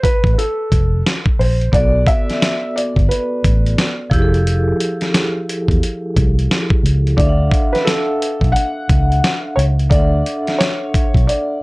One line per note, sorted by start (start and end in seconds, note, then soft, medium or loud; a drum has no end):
0.03 0.30 B4 loud
0.03 kick medium
0.03 closed hi-hat medium
0.24 0.35 A1 medium
0.24 kick medium
0.24 closed hi-hat soft
0.33 0.37 B4 medium
0.38 1.01 A4 medium
0.38 closed hi-hat medium
0.72 1.02 F1 medium
0.72 kick medium
0.72 closed hi-hat medium
1.06 snare medium
1.06 closed hi-hat medium
1.26 kick medium
1.39 1.69 A#1 medium
1.39 1.71 C5 medium
1.39 open hi-hat soft
1.61 closed hi-hat soft
1.72 2.03 B1 loud
1.72 4.07 B3 medium
1.72 4.08 F#4 medium
1.72 4.09 A4 medium
1.72 2.08 D5 loud
1.72 kick loud
1.72 closed hi-hat medium
1.78 4.10 D5 medium
2.07 2.77 E5 loud
2.07 kick medium
2.07 closed hi-hat medium
2.30 snare soft
2.30 closed hi-hat soft
2.42 snare loud
2.42 closed hi-hat medium
2.76 3.10 D5 loud
2.76 closed hi-hat medium
2.96 3.08 G1 medium
2.96 kick medium
2.96 closed hi-hat soft
3.09 3.73 B4 medium
3.09 closed hi-hat medium
3.44 3.74 A1 medium
3.44 kick medium
3.44 closed hi-hat medium
3.66 closed hi-hat soft
3.78 snare medium
3.78 closed hi-hat medium
4.10 4.72 F1 medium
4.10 6.79 F3 medium
4.10 6.80 E4 medium
4.10 6.81 G4 medium
4.10 kick loud
4.10 closed hi-hat medium
4.15 4.21 G#4 medium
4.22 6.85 A4 medium
4.34 closed hi-hat soft
4.47 closed hi-hat medium
4.80 closed hi-hat medium
5.01 snare soft
5.01 closed hi-hat soft
5.14 snare loud
5.14 closed hi-hat medium
5.49 closed hi-hat medium
5.68 5.80 E2 medium
5.68 kick medium
5.68 closed hi-hat soft
5.83 closed hi-hat medium
6.17 6.47 C2 medium
6.17 kick medium
6.17 closed hi-hat medium
6.39 closed hi-hat soft
6.51 snare medium
6.51 closed hi-hat medium
6.70 kick loud
6.83 7.14 C#2 medium
6.83 closed hi-hat medium
7.07 closed hi-hat soft
7.17 7.49 D2 loud
7.17 9.86 D4 medium
7.17 9.87 A4 medium
7.17 7.75 D5 loud
7.17 9.88 E5 medium
7.17 kick loud
7.17 closed hi-hat medium
7.22 7.28 F5 medium
7.29 9.92 F#5 medium
7.51 kick loud
7.51 closed hi-hat medium
7.73 7.85 B4 medium
7.73 snare soft
7.73 closed hi-hat soft
7.85 8.50 A4 medium
7.85 snare loud
7.85 closed hi-hat medium
8.22 closed hi-hat medium
8.41 8.53 B1 medium
8.41 kick medium
8.41 closed hi-hat soft
8.52 9.52 F#5 loud
8.52 closed hi-hat medium
8.89 9.20 C#2 medium
8.89 kick medium
8.89 closed hi-hat medium
9.12 closed hi-hat soft
9.24 snare medium
9.24 closed hi-hat medium
9.56 9.88 C#2 medium
9.56 9.63 C#5 medium
9.56 closed hi-hat medium
9.79 closed hi-hat soft
9.89 10.21 D2 loud
9.89 11.63 D4 medium
9.89 11.63 A4 medium
9.89 10.61 D5 loud
9.89 11.63 E5 medium
9.89 kick loud
9.89 closed hi-hat medium
9.95 11.63 F#5 medium
10.26 closed hi-hat medium
10.47 snare soft
10.47 closed hi-hat soft
10.59 11.29 C#5 loud
10.59 snare loud
10.59 closed hi-hat medium
10.94 kick medium
10.94 closed hi-hat medium
11.14 11.26 B1 medium
11.14 kick medium
11.14 closed hi-hat soft
11.27 11.63 D5 medium
11.27 closed hi-hat medium